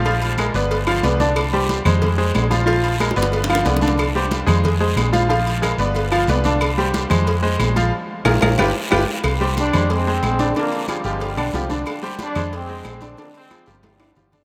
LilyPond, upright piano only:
\new Staff \with { instrumentName = "Upright piano" } { \time 4/4 \key bes \mixolydian \tempo 4 = 183 <f f' f''>4 <aes aes' bes'>8 <b b' d''>4 <f f' f''>8 <b b' d''>8 <d d' d''>8~ | <d d' d''>8 <g g' c''>4 <aes aes' c''>4 <aes aes' c''>4 <f f' f''>8 | <f f' f''>4 <aes aes' bes'>8 <b b' d''>4 <f f' f''>8 <b b' d''>8 <d d' d''>8~ | <d d' d''>8 <g g' c''>4 <aes aes' c''>4 <aes aes' c''>4 <f f' f''>8 |
<f f' f''>4 <aes aes' bes'>8 <b b' d''>4 <f f' f''>8 <b b' d''>8 <d d' d''>8~ | <d d' d''>8 <g g' c''>4 <aes aes' c''>4 <aes aes' c''>4 <f f' f''>8 | r4 <f' aes' bes'>8 <f' aes' bes'>8 <f' g' b'>8 r8 <f' g' b'>8 r8 | r8 <g g' c''>4 <aes aes' c''>4 <aes aes' c''>4 <d d' d''>8 |
<d d' d''>4 <f f' aes'>8 <f f' g'>4 <d d' d''>8 <f f' g'>8 <d d' d''>8~ | <d d' d''>8 <g g' c''>4 <aes aes' c''>4 <aes aes' c''>4 <d d' d''>8 | <d d' d''>4 <f f' aes'>8 <f f' g'>4 <d d' d''>8 <f f' g'>8 <d d' d''>8 | }